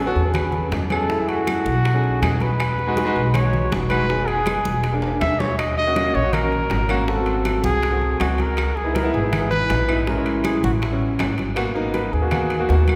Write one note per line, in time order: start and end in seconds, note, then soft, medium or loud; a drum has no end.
0.00 0.10 A1 medium
0.00 0.31 A4 loud
0.06 0.19 B3 loud
0.06 0.20 C#4 medium
0.06 0.20 F#4 loud
0.15 0.68 E2 medium
0.15 high bongo soft
0.15 high conga soft
0.25 0.38 B3 medium
0.25 0.39 C#4 medium
0.25 0.39 G#4 medium
0.34 0.69 B4 medium
0.34 high bongo medium
0.34 high conga soft
0.34 low conga medium
0.34 high timbale medium
0.34 claves medium
0.44 0.77 B3 medium
0.44 0.77 C#4 medium
0.44 0.78 G#4 medium
0.52 high bongo soft
0.52 high conga soft
0.52 low conga medium
0.71 1.59 F#2 medium
0.71 high bongo medium
0.71 low bongo medium
0.71 high conga medium
0.71 high timbale medium
0.71 low timbale medium
0.90 1.04 B3 medium
0.90 1.04 C#4 medium
0.90 1.04 G#4 medium
0.90 1.30 A4 medium
0.90 high conga medium
0.90 high timbale medium
0.90 claves medium
1.09 1.16 A3 medium
1.09 1.16 E4 medium
1.09 1.16 G#4 medium
1.09 high bongo medium
1.09 high conga soft
1.19 1.71 A3 medium
1.19 1.72 E4 medium
1.19 1.72 G#4 medium
1.29 2.21 F#4 loud
1.29 high bongo soft
1.29 high conga soft
1.29 high timbale medium
1.47 high bongo medium
1.47 high conga medium
1.47 high timbale medium
1.47 low timbale medium
1.47 claves medium
1.65 2.18 B1 medium
1.65 high bongo soft
1.65 high conga medium
1.85 high bongo medium
1.85 high conga soft
1.85 high timbale medium
1.93 2.46 A3 medium
1.93 2.46 C#4 medium
1.93 2.46 D#4 medium
1.93 2.47 G#4 medium
2.04 high conga soft
2.22 3.09 E2 medium
2.22 2.43 G#4 medium
2.22 high bongo medium
2.22 low bongo medium
2.22 high conga medium
2.22 high timbale medium
2.22 low timbale medium
2.22 claves medium
2.40 3.36 B4 loud
2.40 high bongo soft
2.40 high conga medium
2.40 high timbale medium
2.59 high bongo medium
2.59 high conga soft
2.59 high timbale medium
2.59 claves medium
2.78 high bongo soft
2.78 high conga soft
2.87 2.94 G#3 medium
2.87 2.94 D#4 medium
2.87 2.94 F#4 loud
2.96 3.03 G#3 medium
2.96 3.03 D#4 medium
2.96 3.03 F#4 medium
2.96 high bongo medium
2.96 high conga medium
2.96 high timbale medium
2.96 low timbale medium
3.05 3.18 G#3 loud
3.05 3.19 D#4 loud
3.05 3.19 F#4 loud
3.16 3.68 B1 medium
3.16 high bongo soft
3.16 high conga soft
3.24 3.37 G#3 medium
3.24 3.38 D#4 medium
3.24 3.38 F#4 medium
3.34 3.72 C#5 loud
3.34 high bongo medium
3.34 high conga soft
3.34 low conga medium
3.34 high timbale medium
3.34 claves medium
3.44 3.76 G#3 medium
3.44 3.77 D#4 medium
3.44 3.77 F#4 medium
3.53 high bongo soft
3.53 high conga soft
3.53 low conga medium
3.71 4.59 F1 medium
3.71 high bongo medium
3.71 low bongo medium
3.71 high conga medium
3.71 high timbale medium
3.71 low timbale medium
3.89 4.03 G#3 medium
3.89 4.04 D#4 medium
3.89 4.04 F#4 loud
3.89 4.29 B4 loud
3.89 high conga medium
3.89 high timbale medium
3.89 claves medium
4.08 4.15 B3 medium
4.08 4.16 D#4 medium
4.08 4.16 G#4 medium
4.08 high bongo medium
4.08 high conga soft
4.17 4.70 B3 medium
4.17 4.71 D#4 medium
4.17 4.71 G#4 medium
4.28 4.94 G#4 loud
4.28 high bongo soft
4.28 high conga soft
4.28 high timbale medium
4.46 high bongo medium
4.46 high conga medium
4.46 high timbale medium
4.46 low timbale medium
4.46 claves medium
4.65 5.17 E1 medium
4.65 high bongo soft
4.65 high conga loud
4.83 high bongo medium
4.83 high timbale medium
4.92 5.45 A#3 medium
4.92 5.45 D4 medium
4.92 5.46 G#4 medium
5.02 high conga soft
5.02 high timbale medium
5.21 6.09 D#2 medium
5.21 5.41 E5 loud
5.21 high bongo medium
5.21 low bongo medium
5.21 high conga medium
5.21 high timbale medium
5.21 claves medium
5.40 5.58 C#5 medium
5.40 high bongo soft
5.40 high conga medium
5.40 low timbale medium
5.58 5.76 D#5 medium
5.58 high bongo medium
5.58 high timbale medium
5.58 claves medium
5.77 6.17 D#5 loud
5.77 high bongo soft
5.77 high conga soft
5.86 5.93 A#3 medium
5.86 5.93 C#4 medium
5.86 5.94 F#4 medium
5.95 6.02 A#3 medium
5.95 6.02 C#4 medium
5.95 6.03 F#4 medium
5.95 high bongo medium
5.95 high conga loud
5.95 high timbale medium
5.95 low timbale medium
6.03 6.17 A#3 medium
6.03 6.18 C#4 medium
6.03 6.18 F#4 medium
6.15 6.67 A#1 medium
6.15 6.35 C#5 loud
6.15 high bongo soft
6.15 high conga soft
6.22 6.36 A#3 medium
6.22 6.37 C#4 medium
6.22 6.37 F#4 medium
6.33 7.10 A#4 medium
6.33 high bongo medium
6.33 high conga soft
6.33 low conga medium
6.33 high timbale medium
6.33 claves medium
6.42 6.75 A#3 medium
6.42 6.75 C#4 medium
6.42 6.76 F#4 medium
6.52 high bongo soft
6.52 high conga soft
6.70 7.58 G#1 medium
6.70 high bongo medium
6.70 low bongo medium
6.70 high conga medium
6.70 high timbale medium
6.70 low timbale medium
6.89 7.02 A#3 loud
6.89 7.02 C#4 medium
6.89 7.03 F#4 loud
6.89 high conga medium
6.89 high timbale medium
6.89 claves medium
7.07 7.14 A3 medium
7.07 7.14 C4 medium
7.07 7.15 F#4 medium
7.07 7.64 A4 medium
7.07 high bongo medium
7.07 high conga soft
7.16 7.69 A3 medium
7.16 7.69 C4 medium
7.16 7.70 F#4 medium
7.26 high bongo soft
7.26 high conga soft
7.26 high timbale medium
7.45 high bongo medium
7.45 high conga medium
7.45 high timbale medium
7.45 low timbale medium
7.45 claves medium
7.64 8.16 C2 medium
7.64 8.17 G#4 loud
7.64 high bongo soft
7.64 high conga loud
7.82 high bongo medium
7.82 high conga soft
7.82 high timbale medium
7.91 8.44 A3 medium
7.91 8.44 C4 medium
7.91 8.45 F#4 medium
8.02 high conga soft
8.20 9.08 C#2 medium
8.20 8.42 F#4 medium
8.20 high bongo medium
8.20 low bongo medium
8.20 high conga medium
8.20 high timbale medium
8.20 low timbale medium
8.20 claves medium
8.38 8.78 A#4 medium
8.38 high bongo soft
8.38 high conga medium
8.38 high timbale medium
8.57 high bongo medium
8.57 high conga soft
8.57 high timbale medium
8.57 claves medium
8.76 8.97 G#4 medium
8.76 high bongo soft
8.76 high conga soft
8.84 8.91 B3 medium
8.84 8.92 D#4 medium
8.84 8.92 E4 medium
8.93 9.01 B3 medium
8.93 9.01 D#4 medium
8.93 9.02 E4 medium
8.93 9.14 A#4 medium
8.93 high bongo medium
8.93 high conga loud
8.93 high timbale medium
8.93 low timbale medium
9.03 9.17 B3 medium
9.03 9.17 D#4 medium
9.03 9.18 E4 loud
9.14 9.66 G#1 loud
9.14 9.49 G#4 medium
9.14 high bongo soft
9.14 high conga soft
9.22 9.36 B3 medium
9.22 9.36 D#4 medium
9.22 9.37 E4 medium
9.33 high bongo medium
9.33 high conga soft
9.33 low conga medium
9.33 high timbale medium
9.33 claves medium
9.40 9.74 B3 medium
9.40 9.74 D#4 medium
9.40 9.74 E4 medium
9.51 10.03 B4 loud
9.51 high bongo soft
9.51 high conga soft
9.51 low conga medium
9.70 10.58 A#1 medium
9.70 high bongo medium
9.70 low bongo medium
9.70 high conga medium
9.70 high timbale medium
9.70 low timbale medium
9.88 10.01 B3 medium
9.88 10.02 D#4 medium
9.88 10.02 E4 medium
9.88 high timbale medium
9.88 claves medium
10.07 10.14 G#3 medium
10.07 10.14 C#4 medium
10.07 10.14 E4 medium
10.07 10.43 A#4 medium
10.07 high bongo medium
10.07 high conga soft
10.16 10.69 G#3 medium
10.16 10.69 C#4 medium
10.16 10.70 E4 medium
10.26 high bongo soft
10.26 high conga soft
10.26 high timbale medium
10.44 10.62 G#4 medium
10.44 high bongo medium
10.44 high conga medium
10.44 high timbale medium
10.44 low timbale medium
10.44 claves medium
10.63 11.16 A1 medium
10.63 10.72 F#4 medium
10.63 high bongo soft
10.63 high conga medium
10.82 11.35 E4 medium
10.82 high bongo medium
10.82 high conga soft
10.82 high timbale medium
10.91 11.44 G3 medium
10.91 11.44 B3 soft
10.91 11.44 C#4 medium
11.01 high conga soft
11.19 12.07 G#1 medium
11.19 high bongo medium
11.19 low bongo medium
11.19 high conga medium
11.19 high timbale medium
11.19 low timbale medium
11.19 claves medium
11.38 high bongo soft
11.38 high conga medium
11.38 high timbale medium
11.56 11.70 A#3 medium
11.56 11.70 B3 medium
11.56 11.70 F#4 loud
11.56 high bongo medium
11.56 high conga soft
11.56 high timbale medium
11.56 claves medium
11.74 12.08 A#3 medium
11.74 12.08 B3 medium
11.74 12.08 D#4 loud
11.74 high bongo soft
11.74 high conga soft
11.94 12.15 B4 medium
11.94 high bongo medium
11.94 high conga medium
11.94 high timbale medium
11.94 low timbale medium
12.13 12.65 D#2 medium
12.13 12.69 G#4 medium
12.13 high conga soft
12.21 12.29 A#3 medium
12.21 12.29 B3 medium
12.21 12.29 F#4 medium
12.31 12.51 A#3 medium
12.31 12.52 B3 medium
12.31 12.52 F#4 medium
12.31 high bongo medium
12.31 high conga soft
12.31 low conga medium
12.31 high timbale medium
12.31 claves medium
12.50 high bongo soft
12.50 high conga soft
12.50 high timbale medium
12.59 12.66 A#3 medium
12.59 12.66 B3 medium
12.59 12.67 F#4 medium
12.69 12.96 D#2 medium
12.69 12.96 A#3 medium
12.69 12.96 B3 medium
12.69 12.96 F#4 medium
12.69 high bongo soft
12.69 low bongo medium
12.69 high conga soft
12.69 low timbale medium
12.88 high bongo soft
12.88 high conga medium
12.88 high timbale medium
12.88 claves medium